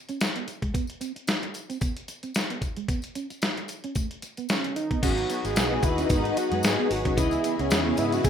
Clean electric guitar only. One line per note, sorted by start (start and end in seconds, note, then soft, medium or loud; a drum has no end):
0.09 0.17 C#4 medium
0.36 0.44 B3 medium
0.47 muted clean electric guitar stroke soft
0.62 0.70 G#3 medium
0.74 0.84 B3 medium
1.01 1.11 C4 medium
1.16 muted clean electric guitar stroke soft
1.28 1.38 D#4 medium
1.42 muted clean electric guitar stroke soft
1.70 1.78 C4 medium
1.81 1.91 B3 medium
2.08 muted clean electric guitar stroke soft
2.23 2.31 C4 medium
2.50 2.58 B3 medium
2.62 muted clean electric guitar stroke soft
2.77 2.85 G#3 medium
2.89 2.99 B3 medium
3.15 3.26 C#4 medium
3.30 muted clean electric guitar stroke soft
3.42 3.52 E4 medium
3.57 muted clean electric guitar stroke soft
3.84 3.92 C#4 medium
3.96 4.06 A3 medium
4.23 muted clean electric guitar stroke soft
4.38 4.46 B3 medium
4.65 4.72 C#4 medium
4.76 muted clean electric guitar stroke soft
4.91 4.99 B3 medium
5.03 5.13 C#4 medium
5.30 5.40 B3 medium
5.45 muted clean electric guitar stroke soft
5.72 5.80 B3 medium
5.84 muted clean electric guitar stroke soft
5.98 6.06 C#4 medium
6.10 6.20 B3 medium
6.37 muted clean electric guitar stroke soft
6.52 6.60 G#3 medium
6.79 6.87 B3 medium
6.91 muted clean electric guitar stroke soft
7.06 7.14 C#4 medium
7.18 7.28 C#4 medium
7.45 7.55 B3 medium
7.60 muted clean electric guitar stroke soft
7.86 7.94 B3 medium
8.14 8.21 C#4 medium
8.25 8.30 B3 medium